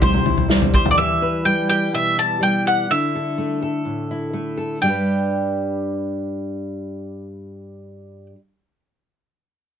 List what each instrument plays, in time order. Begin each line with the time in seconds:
Already playing: upright bass C2, steel-string acoustic guitar C3 E4 G4 C5
0.02 steel-string acoustic guitar G3, mandolin C5, kick, floor tom, mid tom
0.14 mid tom
0.26 steel-string acoustic guitar E4, floor tom
0.37 floor tom
0.48 steel-string acoustic guitar G3, snare
0.62 floor tom
0.74 steel-string acoustic guitar G4, mandolin C5, kick
0.85 floor tom
0.91 mandolin D5
0.97 steel-string acoustic guitar E3 E4, mandolin E5
1.22 steel-string acoustic guitar B4
1.45 steel-string acoustic guitar G3, mandolin G5
1.69 steel-string acoustic guitar G4, mandolin G5
1.93 steel-string acoustic guitar B2, mandolin E5
2.17 steel-string acoustic guitar E4, mandolin A5
2.41 steel-string acoustic guitar G3, mandolin G5
2.66 steel-string acoustic guitar G4, mandolin F#5
2.90 steel-string acoustic guitar D3 E4, mandolin E5
3.15 steel-string acoustic guitar A4
3.38 steel-string acoustic guitar A3
3.62 steel-string acoustic guitar A4
3.85 steel-string acoustic guitar A2
4.11 steel-string acoustic guitar E4
4.33 steel-string acoustic guitar A3
4.57 steel-string acoustic guitar A4
4.81 steel-string acoustic guitar G2 G3, mandolin G5
4.85 steel-string acoustic guitar D4 G4 B4